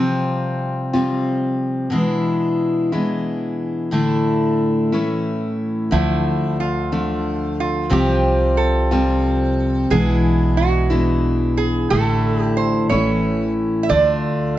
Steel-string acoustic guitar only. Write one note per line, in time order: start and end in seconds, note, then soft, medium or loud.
0.00 0.93 C3 medium
0.00 0.93 F3 medium
0.00 0.93 G3 medium
0.00 0.92 C4 medium
0.00 0.92 F4 medium
0.93 1.90 C3 soft
0.93 1.91 F3 soft
0.93 1.92 G3 soft
0.93 1.92 C4 medium
0.93 1.93 F4 medium
1.90 2.91 B2 medium
1.90 2.93 E3 medium
1.90 2.92 G#3 medium
1.90 2.91 D4 medium
1.90 2.92 E4 medium
2.92 3.91 B2 soft
2.92 3.92 E3 soft
2.92 3.92 G#3 soft
2.92 3.92 D4 soft
2.92 3.93 E4 soft
3.91 4.92 A2 medium
3.91 4.92 D3 medium
3.91 4.93 A3 medium
3.91 4.93 D4 medium
3.91 4.91 E4 medium
4.92 5.90 A2 soft
4.92 5.92 E3 soft
4.92 5.91 A3 soft
4.92 5.92 C#4 medium
4.92 5.92 E4 soft
5.91 6.91 D3 medium
5.91 6.92 F3 medium
5.91 6.91 A3 medium
5.91 6.91 D4 medium
6.92 7.89 D3 medium
6.92 7.89 F3 soft
6.92 7.90 A3 medium
6.92 7.90 D4 medium
7.90 8.91 C3 medium
7.90 8.91 F3 medium
7.90 8.91 G3 medium
7.90 8.91 C4 medium
7.90 8.90 F4 medium
8.91 9.90 C3 medium
8.91 9.91 F3 soft
8.91 9.91 G3 medium
8.91 9.92 C4 medium
8.91 9.91 F4 medium
9.90 10.91 B2 medium
9.90 10.91 E3 medium
9.90 10.90 G#3 medium
9.90 10.89 D4 medium
9.90 10.90 E4 medium
10.90 11.90 B2 medium
10.90 11.91 E3 medium
10.90 11.91 G#3 soft
10.90 11.90 D4 medium
10.90 11.90 E4 medium
11.90 12.90 A2 medium
11.90 12.91 D3 medium
11.90 12.91 A3 medium
11.90 12.90 D4 medium
11.90 12.89 E4 medium
12.90 13.91 A2 soft
12.90 13.89 E3 medium
12.90 13.89 A3 medium
12.90 13.90 C#4 medium
12.90 13.90 E4 medium
13.89 14.59 D3 medium
13.89 14.59 A3 medium
13.89 14.59 D4 medium
13.89 14.59 F4 medium